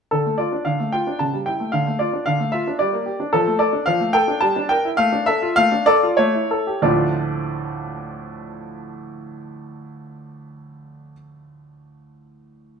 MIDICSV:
0, 0, Header, 1, 2, 480
1, 0, Start_track
1, 0, Key_signature, -1, "minor"
1, 0, Tempo, 537153
1, 105, Time_signature, 3, 2, 24, 8
1, 3465, Tempo, 566572
1, 4905, Tempo, 609756
1, 5385, Tempo, 645161
1, 10305, End_track
2, 0, Start_track
2, 0, Title_t, "Grand piano"
2, 0, Program_c, 0, 0
2, 100, Note_on_c, 0, 69, 56
2, 109, Note_on_c, 0, 50, 41
2, 225, Note_off_c, 0, 50, 0
2, 230, Note_on_c, 0, 57, 31
2, 336, Note_on_c, 0, 74, 55
2, 345, Note_off_c, 0, 69, 0
2, 346, Note_on_c, 0, 65, 34
2, 355, Note_off_c, 0, 57, 0
2, 468, Note_on_c, 0, 62, 31
2, 475, Note_off_c, 0, 65, 0
2, 578, Note_on_c, 0, 77, 57
2, 585, Note_off_c, 0, 74, 0
2, 587, Note_on_c, 0, 50, 40
2, 596, Note_off_c, 0, 62, 0
2, 706, Note_off_c, 0, 50, 0
2, 712, Note_on_c, 0, 57, 33
2, 826, Note_off_c, 0, 77, 0
2, 826, Note_on_c, 0, 79, 67
2, 836, Note_on_c, 0, 65, 40
2, 839, Note_off_c, 0, 57, 0
2, 957, Note_on_c, 0, 62, 35
2, 961, Note_off_c, 0, 65, 0
2, 1046, Note_off_c, 0, 79, 0
2, 1065, Note_on_c, 0, 81, 58
2, 1074, Note_on_c, 0, 49, 36
2, 1075, Note_off_c, 0, 62, 0
2, 1190, Note_off_c, 0, 49, 0
2, 1192, Note_on_c, 0, 55, 32
2, 1211, Note_off_c, 0, 81, 0
2, 1303, Note_on_c, 0, 79, 59
2, 1314, Note_on_c, 0, 64, 36
2, 1318, Note_off_c, 0, 55, 0
2, 1430, Note_on_c, 0, 57, 33
2, 1440, Note_off_c, 0, 64, 0
2, 1537, Note_on_c, 0, 77, 66
2, 1547, Note_on_c, 0, 50, 48
2, 1548, Note_off_c, 0, 79, 0
2, 1551, Note_off_c, 0, 57, 0
2, 1666, Note_off_c, 0, 50, 0
2, 1671, Note_on_c, 0, 57, 31
2, 1779, Note_on_c, 0, 74, 57
2, 1783, Note_off_c, 0, 77, 0
2, 1787, Note_on_c, 0, 65, 37
2, 1797, Note_off_c, 0, 57, 0
2, 1906, Note_on_c, 0, 62, 34
2, 1915, Note_off_c, 0, 65, 0
2, 2016, Note_on_c, 0, 77, 70
2, 2024, Note_off_c, 0, 74, 0
2, 2028, Note_on_c, 0, 50, 45
2, 2034, Note_off_c, 0, 62, 0
2, 2143, Note_on_c, 0, 57, 33
2, 2145, Note_off_c, 0, 50, 0
2, 2251, Note_on_c, 0, 76, 70
2, 2262, Note_off_c, 0, 77, 0
2, 2265, Note_on_c, 0, 65, 44
2, 2272, Note_off_c, 0, 57, 0
2, 2390, Note_on_c, 0, 62, 37
2, 2392, Note_off_c, 0, 65, 0
2, 2399, Note_off_c, 0, 76, 0
2, 2492, Note_on_c, 0, 74, 69
2, 2504, Note_on_c, 0, 55, 44
2, 2508, Note_off_c, 0, 62, 0
2, 2618, Note_on_c, 0, 58, 36
2, 2620, Note_off_c, 0, 55, 0
2, 2733, Note_on_c, 0, 67, 40
2, 2746, Note_off_c, 0, 58, 0
2, 2859, Note_on_c, 0, 62, 41
2, 2864, Note_off_c, 0, 67, 0
2, 2940, Note_off_c, 0, 74, 0
2, 2973, Note_on_c, 0, 69, 73
2, 2980, Note_off_c, 0, 62, 0
2, 2981, Note_on_c, 0, 53, 52
2, 3098, Note_off_c, 0, 53, 0
2, 3103, Note_on_c, 0, 57, 40
2, 3201, Note_off_c, 0, 69, 0
2, 3207, Note_on_c, 0, 74, 76
2, 3215, Note_on_c, 0, 69, 40
2, 3229, Note_off_c, 0, 57, 0
2, 3332, Note_on_c, 0, 62, 43
2, 3346, Note_off_c, 0, 69, 0
2, 3447, Note_on_c, 0, 77, 84
2, 3457, Note_off_c, 0, 74, 0
2, 3459, Note_on_c, 0, 53, 56
2, 3465, Note_off_c, 0, 62, 0
2, 3570, Note_on_c, 0, 57, 39
2, 3574, Note_off_c, 0, 53, 0
2, 3680, Note_on_c, 0, 79, 97
2, 3688, Note_off_c, 0, 77, 0
2, 3691, Note_on_c, 0, 69, 56
2, 3697, Note_off_c, 0, 57, 0
2, 3804, Note_on_c, 0, 62, 50
2, 3816, Note_off_c, 0, 69, 0
2, 3912, Note_on_c, 0, 81, 81
2, 3923, Note_off_c, 0, 79, 0
2, 3924, Note_on_c, 0, 55, 56
2, 3927, Note_off_c, 0, 62, 0
2, 4042, Note_off_c, 0, 55, 0
2, 4044, Note_on_c, 0, 62, 48
2, 4154, Note_on_c, 0, 79, 88
2, 4159, Note_off_c, 0, 81, 0
2, 4164, Note_on_c, 0, 70, 50
2, 4172, Note_off_c, 0, 62, 0
2, 4289, Note_on_c, 0, 64, 50
2, 4293, Note_off_c, 0, 70, 0
2, 4303, Note_off_c, 0, 79, 0
2, 4391, Note_on_c, 0, 77, 93
2, 4398, Note_on_c, 0, 57, 63
2, 4410, Note_off_c, 0, 64, 0
2, 4522, Note_on_c, 0, 62, 50
2, 4523, Note_off_c, 0, 57, 0
2, 4638, Note_on_c, 0, 76, 93
2, 4646, Note_off_c, 0, 77, 0
2, 4649, Note_on_c, 0, 69, 54
2, 4656, Note_off_c, 0, 62, 0
2, 4774, Note_on_c, 0, 65, 51
2, 4783, Note_off_c, 0, 69, 0
2, 4870, Note_off_c, 0, 76, 0
2, 4890, Note_on_c, 0, 77, 108
2, 4900, Note_on_c, 0, 57, 61
2, 4908, Note_off_c, 0, 65, 0
2, 5016, Note_off_c, 0, 57, 0
2, 5016, Note_on_c, 0, 62, 47
2, 5110, Note_off_c, 0, 77, 0
2, 5128, Note_on_c, 0, 74, 95
2, 5136, Note_on_c, 0, 69, 65
2, 5144, Note_off_c, 0, 62, 0
2, 5262, Note_on_c, 0, 65, 51
2, 5266, Note_off_c, 0, 69, 0
2, 5278, Note_off_c, 0, 74, 0
2, 5370, Note_on_c, 0, 73, 78
2, 5380, Note_on_c, 0, 57, 62
2, 5385, Note_off_c, 0, 65, 0
2, 5497, Note_off_c, 0, 57, 0
2, 5502, Note_on_c, 0, 64, 45
2, 5625, Note_on_c, 0, 69, 49
2, 5630, Note_off_c, 0, 64, 0
2, 5745, Note_on_c, 0, 67, 44
2, 5751, Note_off_c, 0, 69, 0
2, 5828, Note_off_c, 0, 73, 0
2, 5856, Note_on_c, 0, 38, 57
2, 5856, Note_on_c, 0, 45, 50
2, 5858, Note_on_c, 0, 74, 62
2, 5859, Note_on_c, 0, 53, 47
2, 5861, Note_on_c, 0, 57, 45
2, 5864, Note_on_c, 0, 62, 49
2, 5864, Note_on_c, 0, 65, 48
2, 5865, Note_off_c, 0, 67, 0
2, 6019, Control_c, 0, 64, 127
2, 9047, Note_off_c, 0, 38, 0
2, 9047, Note_off_c, 0, 45, 0
2, 9049, Note_off_c, 0, 74, 0
2, 9050, Note_off_c, 0, 53, 0
2, 9053, Note_off_c, 0, 57, 0
2, 9056, Note_off_c, 0, 62, 0
2, 9056, Note_off_c, 0, 65, 0
2, 10305, End_track
0, 0, End_of_file